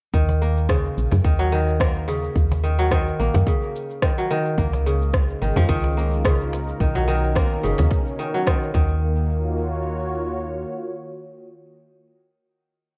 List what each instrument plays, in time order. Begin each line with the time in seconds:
0.13 fm bass D#2, kora D#3, kick, cabasa
0.29 cajon bass, cabasa
0.42 kora A#3, cabasa
0.58 cabasa
0.69 kora C#3, kick, cross-stick, cajon slap, cabasa
0.85 cabasa
0.97 fm bass A#1, cabasa
1.11 fm bass F#2, cajon bass, cajon slap, cabasa
1.24 fm bass D#2, kora D#3, kick, cabasa
1.39 kora F#3, cajon slap, cabasa
1.52 kora D#3, cabasa
1.69 cabasa
1.80 kora A#3, kick, cross-stick, cabasa
1.97 cabasa
2.08 kora C#3, cajon slap, cabasa
2.24 cabasa
2.36 fm bass D#2, kick, cabasa
2.52 cajon bass, cabasa
2.64 kora D#3, cabasa
2.79 kora F#3, cabasa
2.91 kora D#3, kick, cross-stick, cajon slap, cabasa
3.08 cabasa
3.20 fm bass A#1, kora A#3, cabasa
3.34 fm bass F#2, cajon bass, cajon slap, cabasa
3.47 kora C#3, kick, cajon slap, cabasa
3.63 cabasa
3.76 cabasa
3.91 cabasa
4.02 kora D#3, kick, cross-stick, cabasa
4.18 kora F#3, cabasa
4.31 kora D#3, cabasa
4.46 cabasa
4.58 fm bass C#2, analog synth pad C#3, kora A#3, kick, cabasa
4.66 analog synth pad G#3
4.73 cajon bass, cabasa
4.86 kora C#3, cabasa
5.02 cabasa
5.10 analog synth pad D#4, kick, cross-stick, cajon slap
5.15 analog synth pad A#4, cabasa
5.30 cabasa
5.42 fm bass G#1, kora D#3, analog synth pad F4, cabasa
5.56 fm bass F2, kora F3, cajon bass, cajon slap, cabasa
5.69 fm bass C#2, kora D#3, kick, cabasa
5.84 cajon slap, cabasa
5.97 kora A#3, cabasa
6.13 cabasa
6.25 kora C#3, kick, cross-stick, cabasa
6.41 cabasa
6.53 cajon slap, cabasa
6.69 cabasa
6.80 fm bass B1, analog synth pad B2, kora D#3, kick, cabasa
6.95 kora F#3, cajon bass, cabasa
7.08 kora D#3, analog synth pad C#4, cabasa
7.24 cabasa
7.35 kora A#3, kick, cross-stick, cajon slap, cabasa
7.53 cabasa
7.63 fm bass F#1, kora C#3, cabasa
7.78 fm bass D#2, cajon bass, cajon slap, cabasa
7.91 kick, cajon slap, cabasa
8.08 cabasa
8.19 kora D#3, cabasa
8.34 kora F#3, cabasa
8.47 kora D#3, kick, cross-stick, cabasa
8.63 cabasa
8.74 fm bass D#2, kora D#3, analog synth pad D#3, kick
8.84 analog synth pad A#3
9.19 analog synth pad F4
9.27 analog synth pad F#4
9.35 analog synth pad C#5